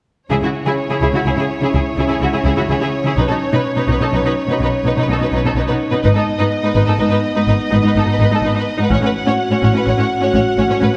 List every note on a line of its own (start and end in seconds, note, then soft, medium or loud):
0.29 0.36 C#2 soft
0.29 0.35 C#3 soft
0.29 5.99 C#4 soft
0.29 3.13 E4 soft
0.29 0.35 E4 soft
0.29 0.36 G#4 soft
0.29 6.00 C#5 soft
0.41 0.46 C#3 soft
0.41 0.48 E4 soft
0.41 0.48 F#4 soft
0.65 0.70 C#3 soft
0.65 0.72 E4 soft
0.65 0.71 G#4 soft
0.89 0.94 C#3 soft
0.89 0.96 E4 soft
0.89 0.95 G#4 soft
1.01 1.07 C#2 soft
1.01 1.06 C#3 soft
1.01 1.07 E4 soft
1.01 1.07 G#4 soft
1.13 1.18 C#3 soft
1.13 1.19 E4 soft
1.13 1.19 F#4 soft
1.25 1.31 C#2 soft
1.25 1.30 C#3 soft
1.25 1.31 E4 soft
1.25 1.32 G#4 soft
1.37 1.42 C#3 soft
1.37 1.42 E4 soft
1.37 1.44 G#4 soft
1.61 1.66 C#3 soft
1.61 1.67 E4 soft
1.61 1.69 G#4 soft
1.73 1.79 C#2 soft
1.73 1.78 C#3 soft
1.73 1.78 E4 soft
1.73 1.80 G#4 soft
1.97 2.02 C#2 soft
1.97 2.02 C#3 soft
1.97 2.03 E4 soft
1.97 2.04 G#4 soft
2.08 2.14 C#3 soft
2.08 2.13 E4 soft
2.08 2.15 G#4 soft
2.20 2.26 C#2 soft
2.20 2.25 C#3 soft
2.20 2.26 E4 soft
2.20 2.27 F#4 soft
2.32 2.38 C#3 soft
2.32 2.37 E4 soft
2.32 2.39 G#4 soft
2.44 2.50 C#2 soft
2.44 2.50 C#3 soft
2.44 2.49 E4 soft
2.44 2.51 G#4 soft
2.56 2.61 C#3 soft
2.56 2.62 E4 soft
2.56 2.62 F#4 soft
2.68 2.74 C#2 soft
2.68 2.73 C#3 soft
2.68 2.74 E4 soft
2.68 2.75 G#4 soft
2.80 2.85 C#3 soft
2.80 2.86 E4 soft
2.80 2.86 G#4 soft
3.04 3.09 C#3 soft
3.04 3.10 E4 soft
3.04 3.11 G#4 soft
3.16 3.22 B1 soft
3.16 3.21 B2 soft
3.16 3.22 D#4 soft
3.16 8.74 D#4 soft
3.16 3.23 B4 soft
3.28 3.33 B2 soft
3.28 3.35 D#4 soft
3.28 3.33 A4 soft
3.53 3.58 B2 soft
3.53 3.57 D#4 soft
3.53 3.58 B4 soft
3.76 3.81 B2 soft
3.76 3.81 D#4 soft
3.76 3.82 B4 soft
3.88 3.93 B1 soft
3.88 3.93 B2 soft
3.88 3.93 D#4 soft
3.88 3.96 B4 soft
4.00 4.05 B2 soft
4.00 4.06 D#4 soft
4.00 4.06 A4 soft
4.12 4.17 B1 soft
4.12 4.17 B2 soft
4.12 4.18 D#4 soft
4.12 4.19 B4 soft
4.24 4.29 B2 soft
4.24 4.30 D#4 soft
4.24 4.30 B4 soft
4.47 4.52 B2 soft
4.47 4.55 D#4 soft
4.47 4.54 B4 soft
4.59 4.65 B1 soft
4.59 4.64 B2 soft
4.59 4.66 D#4 soft
4.59 4.68 B4 soft
4.84 4.89 B1 soft
4.84 4.89 B2 soft
4.84 4.91 D#4 soft
4.84 4.91 B4 soft
4.96 5.01 B2 soft
4.96 5.02 D#4 soft
5.01 5.05 B4 soft
5.08 5.13 B1 soft
5.08 5.12 B2 soft
5.08 5.14 D#4 soft
5.13 5.17 A4 soft
5.19 5.24 B2 soft
5.19 5.25 D#4 soft
5.19 5.27 B4 soft
5.32 5.37 B1 soft
5.32 5.37 B2 soft
5.32 5.38 D#4 soft
5.36 5.40 B4 soft
5.44 5.49 B2 soft
5.44 5.50 D#4 soft
5.44 5.50 A4 soft
5.56 5.60 B1 soft
5.56 5.61 B2 soft
5.56 5.63 D#4 soft
5.56 5.62 B4 soft
5.68 5.73 B2 soft
5.68 5.74 D#4 soft
5.68 5.73 B4 soft
5.91 5.96 B2 soft
5.91 5.97 D#4 soft
5.91 5.96 B4 soft
6.03 6.09 G#1 soft
6.03 6.08 G#2 soft
6.03 8.74 B3 soft
6.03 6.09 D#4 soft
6.03 6.08 B4 soft
6.03 8.87 D#5 soft
6.14 6.19 G#2 soft
6.14 6.21 D#4 soft
6.14 6.20 A4 soft
6.39 6.44 G#2 soft
6.39 6.45 D#4 soft
6.39 6.44 B4 soft
6.63 6.68 G#2 soft
6.63 6.69 D#4 soft
6.63 6.69 B4 soft
6.74 6.81 G#1 soft
6.74 6.79 G#2 soft
6.74 6.81 D#4 soft
6.74 6.80 B4 soft
6.87 6.92 G#2 soft
6.87 6.93 D#4 soft
6.87 6.92 A4 soft
6.99 7.04 G#1 soft
6.99 7.04 G#2 soft
6.99 7.04 D#4 soft
6.99 7.04 B4 soft
7.11 7.16 G#2 soft
7.11 7.16 D#4 soft
7.11 7.16 B4 soft
7.35 7.40 G#2 soft
7.35 7.40 D#4 soft
7.35 7.41 B4 soft
7.47 7.53 G#1 soft
7.47 7.52 G#2 soft
7.47 7.53 D#4 soft
7.47 7.53 B4 soft
7.71 7.77 G#1 soft
7.71 7.76 G#2 soft
7.71 7.75 D#4 soft
7.71 7.78 B4 soft
7.83 7.87 G#2 soft
7.83 7.88 D#4 soft
7.83 7.90 B4 soft
7.95 8.01 G#1 soft
7.95 8.00 G#2 soft
7.95 8.00 D#4 soft
7.95 8.03 A4 soft
8.06 8.11 G#2 soft
8.06 8.11 D#4 soft
8.13 8.16 B4 soft
8.19 8.24 G#1 soft
8.19 8.24 G#2 soft
8.19 8.24 D#4 soft
8.23 8.27 B4 soft
8.31 8.35 G#2 soft
8.31 8.36 D#4 soft
8.35 8.39 A4 soft
8.41 8.47 G#1 soft
8.41 8.46 G#2 soft
8.41 8.48 D#4 soft
8.46 8.50 B4 soft
8.53 8.58 G#2 soft
8.53 8.59 D#4 soft
8.59 8.63 B4 soft
8.78 8.83 G#2 soft
8.78 8.83 D#4 soft
8.83 8.87 B4 soft
8.90 8.95 A1 soft
8.90 8.95 A2 soft
8.90 10.97 C#4 soft
8.90 8.95 C#4 soft
8.90 10.97 F#4 soft
8.90 8.98 C#5 soft
8.90 10.97 F#5 soft
9.02 9.07 A2 soft
9.02 9.07 C#4 soft
9.06 9.10 B4 soft
9.26 9.31 A2 soft
9.26 9.31 C#4 soft
9.26 9.32 C#5 soft
9.50 9.55 A2 soft
9.50 9.55 C#4 soft
9.50 9.56 C#5 soft
9.61 9.68 A1 soft
9.61 9.67 A2 soft
9.61 9.66 C#4 soft
9.61 9.68 C#5 soft
9.74 9.79 A2 soft
9.74 9.79 C#4 soft
9.74 9.81 B4 soft
9.85 9.91 A1 soft
9.85 9.91 A2 soft
9.85 9.90 C#4 soft
9.85 9.93 C#5 soft
9.97 10.03 A2 soft
9.97 10.02 C#4 soft
9.97 10.04 C#5 soft
10.20 10.27 A2 soft
10.20 10.25 C#4 soft
10.20 10.28 C#5 soft
10.33 10.39 A1 soft
10.33 10.38 A2 soft
10.33 10.38 C#4 soft
10.33 10.40 C#5 soft
10.56 10.63 A1 soft
10.56 10.61 A2 soft
10.56 10.62 C#4 soft
10.56 10.64 C#5 soft
10.69 10.74 A2 soft
10.69 10.75 C#4 soft
10.69 10.76 C#5 soft
10.81 10.87 A1 soft
10.81 10.86 A2 soft
10.81 10.86 C#4 soft
10.81 10.88 B4 soft
10.94 10.97 C#4 soft